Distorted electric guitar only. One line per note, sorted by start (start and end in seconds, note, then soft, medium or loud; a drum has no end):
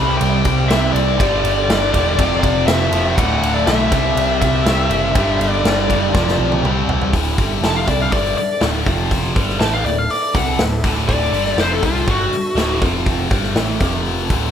0.00 0.68 C3 medium
0.00 0.69 G3 medium
0.00 0.69 C4 loud
0.69 1.18 C3 medium
0.69 1.18 G3 medium
0.69 1.19 C4 loud
1.19 1.92 G2 loud
1.19 1.93 D3 loud
1.19 1.92 G3 loud
1.94 2.18 G2 medium
1.94 2.18 D3 medium
1.94 2.17 G3 medium
2.19 2.91 F2 medium
2.19 2.92 C3 medium
2.19 2.91 F3 loud
2.92 3.17 F2 medium
2.92 3.16 C3 medium
2.92 3.16 F3 loud
3.17 3.90 D2 medium
3.17 3.91 A2 loud
3.17 3.91 D3 loud
3.92 4.64 C3 medium
3.92 4.65 G3 loud
3.92 4.65 C4 medium
4.66 5.14 C3 medium
4.66 5.14 G3 medium
4.66 5.15 C4 medium
5.16 5.88 G2 medium
5.16 5.89 D3 loud
5.16 5.89 G3 loud
5.90 6.14 G2 medium
5.90 6.14 D3 medium
5.90 6.13 G3 medium
6.15 6.63 F2 medium
6.15 6.63 C3 loud
6.15 6.64 F3 loud
6.65 7.12 C3 loud
6.65 7.13 G3 loud
6.65 7.13 C4 loud
7.13 7.37 D2 loud
7.13 7.37 A2 loud
7.13 7.38 D3 loud
7.39 7.62 G2 medium
7.39 7.63 D3 medium
7.39 7.63 G3 medium
7.64 7.87 F2 medium
7.64 7.87 C3 medium
7.64 7.88 F3 loud
7.88 8.12 C3 medium
7.88 8.12 G3 medium
7.88 8.12 C4 loud
8.12 8.36 G2 medium
8.12 8.36 D3 loud
8.12 8.37 G3 medium
8.37 muted distorted electric guitar stroke medium
8.61 8.85 D2 loud
8.61 8.85 A2 loud
8.61 8.85 D3 loud
8.85 9.35 F2 medium
8.85 9.35 C3 loud
8.85 9.35 F3 loud
9.35 9.59 G2 medium
9.35 9.60 D3 loud
9.35 9.60 G3 loud
9.60 9.84 A2 medium
9.60 9.85 E3 medium
9.60 9.85 A3 loud
9.85 10.05 D2 medium
9.85 10.05 A2 medium
10.35 10.59 C3 medium
10.35 10.59 G3 medium
10.35 10.59 C4 loud
10.59 10.79 D2 medium
10.59 10.79 A2 medium
10.84 11.08 D2 loud
10.84 11.08 A2 loud
10.84 11.08 D3 loud
11.09 11.32 D2 loud
11.09 11.33 A2 loud
11.09 11.32 D3 loud
11.33 11.57 G2 medium
11.33 11.57 D3 loud
11.33 11.58 G3 loud
11.58 11.82 F2 medium
11.58 11.82 C3 loud
11.58 11.83 F3 loud
11.83 12.07 C3 medium
11.83 12.07 G3 loud
11.83 12.08 C4 medium
12.08 12.31 G2 medium
12.08 12.32 D3 medium
12.08 12.32 G3 medium
12.31 muted distorted electric guitar stroke medium
12.57 12.81 D2 medium
12.57 12.81 A2 loud
12.57 12.81 D3 loud
12.82 13.30 F2 medium
12.82 13.31 C3 loud
12.82 13.31 F3 loud
13.31 13.55 G2 loud
13.31 13.56 D3 medium
13.31 13.56 G3 loud
13.56 13.80 A2 medium
13.56 13.80 E3 loud
13.56 13.80 A3 loud
13.81 14.29 F2 medium
13.81 14.29 C3 medium
13.81 14.30 F3 medium
14.31 14.51 D2 medium
14.31 14.51 A2 medium
14.31 14.51 D3 loud